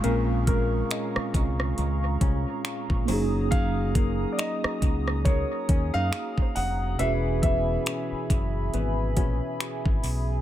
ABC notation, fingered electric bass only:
X:1
M:4/4
L:1/16
Q:"Swing 16ths" 1/4=69
K:Gblyd
V:1 name="Fingered electric bass" clef=bass
B,,,4 z2 C,,2 D,,2 C,, z2 B,,, G,,,2- | G,,,4 z2 D,,3 z E,, G,, z2 F,,,2 | =E,,,4 z2 G,,,2 ^G,,,2 B,,, z2 G,,, =B,,,2 |]